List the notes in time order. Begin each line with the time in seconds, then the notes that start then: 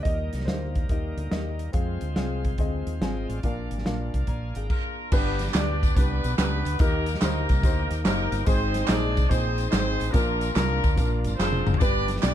0.03 D#2 D#3 G3 A#3 D#4 G4 A#4 D#5, kick, closed hi-hat
0.33 C2, snare, closed hi-hat
0.40 snare
0.45 D2 A#3 D#4 G4 C5 F5, snare, closed hi-hat
0.75 kick, closed hi-hat
0.89 D#2 A#3 D#4 G4 D#5, kick, closed hi-hat
1.17 D2, closed hi-hat
1.31 D#2 A#3 D#4 G4 D#5, snare, closed hi-hat
1.59 closed hi-hat
1.72 F2 G#3 C4 F4 G#4 C5 F5, kick, closed hi-hat
2.01 D2, closed hi-hat
2.15 C2 C4 F4 G#4 F5, snare, closed hi-hat
2.45 kick, closed hi-hat
2.58 D2 C4 F4 G#4 D#5, kick, closed hi-hat
2.87 D#2, closed hi-hat
3.01 G#1 C4 F4 G#4 D#5 G5 G#5, snare, closed hi-hat
3.28 A1 D5 F5, closed hi-hat
3.43 A#1 A#2 A#3 D4 F4 A#4 D5 F5, kick, closed hi-hat
3.71 G#1, closed hi-hat
3.78 snare
3.85 A#1 D4 F4 A#4 F5, snare, closed hi-hat
4.14 C2 D5 F5, kick, closed hi-hat
4.27 A#1 D5 F5 G#5 A#5, kick, closed hi-hat
4.55 G#1 G#4 F5 G5 A#5, closed hi-hat
4.70 A#3 D4 F4 A#4, kick, crash
5.12 G1 G2 G#3 B3 D4 G4 B4, kick, crash, tambourine
5.18 B3
5.39 snare, closed hi-hat, tambourine
5.48 snare
5.54 D2 D4 G4 B4 D5, snare, clap, closed hi-hat, tambourine
5.83 kick, closed hi-hat, tambourine
5.96 C2 B3 D4 G4 B4, kick, closed hi-hat, tambourine
6.24 B1, closed hi-hat, tambourine
6.38 C#2 B3 D4 G4 B4, snare, clap, closed hi-hat, tambourine
6.65 D2, closed hi-hat, tambourine
6.79 D#2 D#3 A#3 D#4 G4 A#4, kick, closed hi-hat, tambourine
7.06 closed hi-hat, tambourine
7.15 snare
7.20 D2 A#3 D#4 G4 A#4 C5, snare, clap, closed hi-hat, tambourine
7.49 C2, kick, closed hi-hat, tambourine
7.63 D2 D#4 G4 C5, kick, closed hi-hat, tambourine
7.91 D#2, closed hi-hat, tambourine
8.04 F#1 A#3 D#4 G4 A#4 C5, snare, clap, closed hi-hat, tambourine
8.32 G1, closed hi-hat, tambourine
8.45 G#1 G#2 C4 D#4 G#4 C5, kick, closed hi-hat, tambourine
8.74 snare, closed hi-hat, tambourine
8.87 A#1 D4 D#4 G#4 C5 D5, snare, clap, closed hi-hat, tambourine
9.17 C2, kick, closed hi-hat, tambourine
9.29 A#1 C4 D#4 G#4 C5, kick, closed hi-hat, tambourine
9.58 closed hi-hat, tambourine
9.70 G#1 C4 D#4 G#4 C5, snare, clap, closed hi-hat, tambourine
10.00 A1, closed hi-hat, tambourine
10.11 A#1 A#2 A#3 C#4 D4 F4 A#4, kick, closed hi-hat, tambourine
10.19 D4
10.41 closed hi-hat, tambourine
10.53 C2 A#3 D4 F4 A#4, snare, clap, closed hi-hat, tambourine
10.57 A#4
10.84 D2, kick, closed hi-hat, tambourine
10.96 A#1 D4 F4 A#4, kick, closed hi-hat, tambourine
11.24 G#1, closed hi-hat, tambourine
11.36 F1 F3 C4 D4 F4 C5, snare
11.40 G#4, clap, tambourine
11.53 high tom
11.67 F#1, mid tom, tambourine
11.74 floor tom
11.79 G1 G2 B3 D4 G4 B4 D5, kick, closed hi-hat, tambourine
12.08 snare, closed hi-hat, tambourine
12.16 snare
12.21 B1 D4 G4 B4 D5, snare, clap, closed hi-hat, tambourine